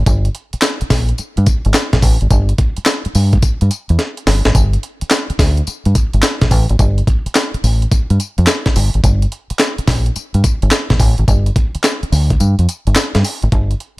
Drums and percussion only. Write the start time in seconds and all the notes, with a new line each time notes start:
0.06 kick, closed hi-hat, tambourine
0.25 closed hi-hat
0.35 closed hi-hat
0.53 closed hi-hat
0.62 snare, clap, closed hi-hat, tambourine
0.81 closed hi-hat
0.90 kick, snare, open hi-hat, tambourine
1.09 closed hi-hat
1.18 closed hi-hat, tambourine
1.37 closed hi-hat
1.46 kick, closed hi-hat, tambourine
1.65 closed hi-hat
1.74 snare, clap, closed hi-hat, tambourine
1.93 kick, snare, closed hi-hat
2.02 kick, open hi-hat, tambourine
2.21 closed hi-hat
2.30 kick, closed hi-hat, tambourine
2.49 closed hi-hat
2.58 kick, closed hi-hat
2.77 closed hi-hat
2.86 snare, clap, closed hi-hat, tambourine
3.05 closed hi-hat
3.15 open hi-hat, tambourine
3.33 kick, closed hi-hat
3.42 kick, closed hi-hat, tambourine
3.61 closed hi-hat
3.71 closed hi-hat, tambourine
3.89 closed hi-hat
3.99 snare, closed hi-hat
4.17 closed hi-hat
4.27 snare, open hi-hat
4.45 snare, closed hi-hat
4.55 kick, closed hi-hat, tambourine
4.73 closed hi-hat
4.83 closed hi-hat
5.01 closed hi-hat
5.10 snare, clap, closed hi-hat, tambourine
5.30 closed hi-hat
5.39 kick, snare, open hi-hat, tambourine
5.57 closed hi-hat
5.67 closed hi-hat, tambourine
5.85 closed hi-hat
5.95 kick, closed hi-hat, tambourine
6.13 closed hi-hat
6.22 snare, clap, closed hi-hat, tambourine
6.41 kick, snare, closed hi-hat
6.51 kick, open hi-hat, tambourine
6.69 closed hi-hat
6.79 kick, closed hi-hat, tambourine
6.98 closed hi-hat
7.07 kick, closed hi-hat
7.26 closed hi-hat
7.35 snare, clap, closed hi-hat, tambourine
7.54 closed hi-hat
7.64 open hi-hat, tambourine
7.82 closed hi-hat
7.91 kick, closed hi-hat, tambourine
8.10 closed hi-hat
8.20 closed hi-hat, tambourine
8.38 closed hi-hat
8.47 snare, clap, closed hi-hat, tambourine
8.66 kick, snare, closed hi-hat
8.76 open hi-hat, tambourine
8.94 closed hi-hat
9.04 kick, closed hi-hat, tambourine
9.22 closed hi-hat
9.32 closed hi-hat
9.50 closed hi-hat
9.59 snare, clap, closed hi-hat, tambourine
9.78 closed hi-hat
9.88 kick, snare, open hi-hat, tambourine
10.06 closed hi-hat
10.16 closed hi-hat, tambourine
10.34 closed hi-hat
10.44 kick, closed hi-hat, tambourine
10.62 closed hi-hat
10.71 snare, clap, closed hi-hat, tambourine
10.90 kick, snare, closed hi-hat
11.00 kick, open hi-hat, tambourine
11.18 closed hi-hat
11.28 kick, closed hi-hat, tambourine
11.46 closed hi-hat
11.56 kick, closed hi-hat
11.75 closed hi-hat
11.84 snare, clap, closed hi-hat, tambourine
12.03 closed hi-hat
12.12 open hi-hat, tambourine
12.30 kick, closed hi-hat
12.40 closed hi-hat, tambourine
12.59 closed hi-hat
12.69 closed hi-hat, tambourine
12.87 closed hi-hat
12.95 snare, clap, closed hi-hat, tambourine
13.15 snare, closed hi-hat
13.24 open hi-hat, tambourine
13.42 closed hi-hat
13.52 kick, closed hi-hat
13.71 closed hi-hat
13.80 closed hi-hat